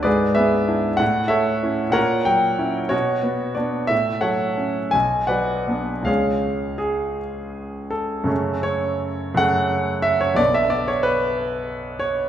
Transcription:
<<
  \new Staff \with { instrumentName = "Grand piano" } { \time 6/8 \key fis \minor \tempo 4. = 60 << { d''8 e''4 fis''8 e''4 | fis''8 g''4 cis''4 d''8 | e''8 fis''4 gis''8 fis''4 | eis''4 gis'4. a'8~ |
a'8 cis''4 fis''4 e''16 cis''16 | d''16 e''16 d''16 cis''16 b'4. cis''8 | } \\ { <gis' b'>8 <gis' b'>4 r8 <a' cis''>4 | <ais' cis''>8 r4 fis'4 r8 | r8 <a' cis''>4 r8 <b' d''>4 | <gis' cis''>4. r4. |
<fis, cis a cis'>4. <fis, cis a cis'>4. | <b,, d b d'>2. | } >> }
  \new Staff \with { instrumentName = "Grand piano" } { \time 6/8 \key fis \minor gis,8 b8 <d' e'>8 a,8 a8 <cis' e'>8 | ais,8 fis8 <cis' e'>8 b,8 b8 <b d'>8 | a,8 fis8 cis'8 b,,8 fis8 <b d'>8 | <cis, cis gis cis'>2. |
r2. | r2. | }
>>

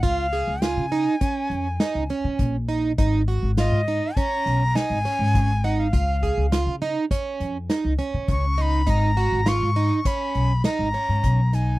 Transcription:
<<
  \new Staff \with { instrumentName = "Flute" } { \time 5/4 \key gis \dorian \tempo 4 = 102 eis''4 gis''2. r4 | r4 dis''4 ais''4 gis''4. fis''16 eis''16~ | eis''4~ eis''16 r2 r8. cis'''8 b''8 | ais''4 cis'''4 b''4 ais''4. gis''8 | }
  \new Staff \with { instrumentName = "Twelve-string acoustic guitar" } { \time 5/4 \key gis \dorian eis'8 gis'8 eis'8 dis'8 cis'4 dis'8 cis'4 dis'8 | dis'8 fis'8 eis'8 dis'8 cis'4 dis'8 cis'4 dis'8 | eis'8 gis'8 eis'8 dis'8 cis'4 dis'8 cis'4 dis'8 | dis'8 fis'8 eis'8 dis'8 cis'4 dis'8 cis'4 dis'8 | }
  \new Staff \with { instrumentName = "Upright bass" } { \clef bass \time 5/4 \key gis \dorian cis,8. cis,8 cis8 r8. eis,8 r16 cis,16 r16 cis16 ais,,4 | gis,,8. gis,,8 gis,8 r8. b,,8 r16 gis,,16 r16 gis,16 gis,,4 | cis,8. cis,8 cis8 r8. eis,8 r16 cis,16 r16 cis16 cis,4 | gis,,8. gis,,8 gis,8 r8. b,,8 r16 gis,,16 r16 gis,16 b,,4 | }
  \new DrumStaff \with { instrumentName = "Drums" } \drummode { \time 5/4 <hh bd>8 <hh sn>8 <hh sn>8 hh8 <hh bd>8 hh8 <hh sn>8 hh8 <hh bd>8 hh8 | <hh bd>8 hh8 <hh sn>8 hh8 <hh bd>8 hh8 <hh sn>8 hh8 <hh bd>8 hh8 | <hh bd>8 <hh bd>8 <hh sn>8 hh8 <hh bd>8 hh8 <hh sn>8 hh8 <hh bd>8 hh8 | <hh bd>8 hh8 <hh sn>8 hh8 <hh bd>8 hh8 <hh sn>8 hh8 <hh bd>8 <hh sn>8 | }
>>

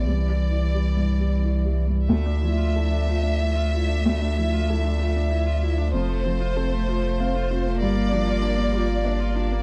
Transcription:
<<
  \new Staff \with { instrumentName = "Violin section" } { \time 3/4 \key d \minor \tempo 4 = 95 d''2~ d''8 r8 | e''2.~ | e''2. | c''2. |
d''2. | }
  \new Staff \with { instrumentName = "Harmonium" } { \time 3/4 \key d \minor << { <g d''>2. | <f d''>2.~ | <f d''>2. | <a c''>2. |
<bes d''>2. | } \\ { e'2. | e''2.~ | e''2. | f'2.~ |
f'2. | } >> }
  \new Staff \with { instrumentName = "Felt piano" } { \time 3/4 \key d \minor \tuplet 3/2 { c,8 g8 e'8 g8 g,8 g8 e'8 g8 g,8 } | d,8 f8 a'8 f'8 e''8 f'8 | d,8 f8 a'8 f'8 e''8 f'8 | f,8 f8 a'8 f'8 f''8 f'8 |
g,8 f8 bes'8 f'8 d''8 f'8 | }
  \new Staff \with { instrumentName = "Viola" } { \time 3/4 \key d \minor r2. | a16 d'16 e'16 f'16 e'16 d'16 a16 d'16 e'16 f'16 e'16 d'16 | a16 d'16 e'16 f'16 e'16 d'16 a16 d'16 e'16 f'16 e'16 d'16 | f16 a16 c'16 f'16 c'16 a16 f16 a16 c'16 f'16 c'16 a16 |
g16 bes16 d'16 f'16 d'16 bes16 g16 bes16 d'16 f'16 d'16 bes16 | }
  \new Staff \with { instrumentName = "Cello" } { \time 3/4 \key d \minor e2~ e8 r8 | a2.~ | a2. | a2. |
bes2. | }
  \new Staff \with { instrumentName = "Sub bass" } { \clef bass \time 3/4 \key d \minor c,2. | d,2.~ | d,2. | f,,2. |
g,,2. | }
>>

